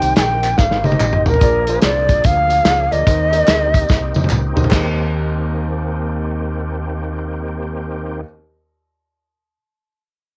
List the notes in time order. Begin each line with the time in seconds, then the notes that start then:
Already playing: D#3 A#3 C4 D#4 G4 A#4 C5 D#5 G5
0.02 C2, closed hi-hat, tambourine
0.16 A#1 G#5, snare, clap, closed hi-hat, tambourine
0.22 G5
0.43 clap, closed hi-hat, tambourine
0.58 G1 F5, kick, snare, tambourine
0.71 snare
0.84 D#4 G4 A#4 C5 D#5, high tom, tambourine
0.92 high tom
1.00 A1, clap, mid tom, tambourine
1.13 mid tom
1.26 A#4, floor tom, tambourine
1.34 floor tom
1.40 A#1 A#2 F3 A#3 D4 F4 G#4 A#4 D5, kick, closed hi-hat, tambourine
1.67 D4 F4 G#4 A#4 C5, closed hi-hat, tambourine
1.82 C2 D5, snare, clap, closed hi-hat, tambourine
2.09 kick, closed hi-hat, tambourine
2.24 D2 F5, kick, closed hi-hat, tambourine
2.50 closed hi-hat, tambourine
2.65 C#2, snare, clap, closed hi-hat, tambourine
2.91 D2 D4 F4 G#4 A#4 D5 D#5, closed hi-hat, tambourine
3.05 D#2 D#3 C4 D#4 G4 A#4 C5 D#5, kick, closed hi-hat, tambourine
3.32 D#4 G4 A#4 C5 D5, closed hi-hat, tambourine
3.38 D#5
3.47 D2, snare, clap, closed hi-hat, tambourine
3.74 kick, closed hi-hat, tambourine
3.89 C2, kick, snare, tambourine
4.14 F2, high tom, tambourine
4.24 high tom
4.30 C#2, clap, mid tom, tambourine
4.56 D2 D#4 G4 A#4 C5 D#5, floor tom, tambourine
4.64 floor tom
4.69 D#2 D#3 A#3 C4 G4 A#4 C5, kick, snare, clap, crash
4.74 D#5